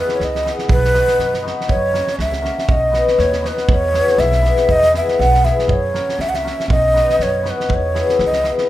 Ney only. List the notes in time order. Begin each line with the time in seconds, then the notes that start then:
0.14 C#5
0.24 D#5
0.72 B4
1.69 C#5
2.21 E5
2.71 D#5
3.20 C#5
3.47 B4
3.72 C#5
4.20 E5
4.71 D#5
4.97 E5
5.20 F#5
5.45 E5
5.71 C#5
6.21 E5
6.29 F#5
6.36 E5
6.71 D#5
7.23 C#5
7.49 B4
7.74 C#5
8.26 D#5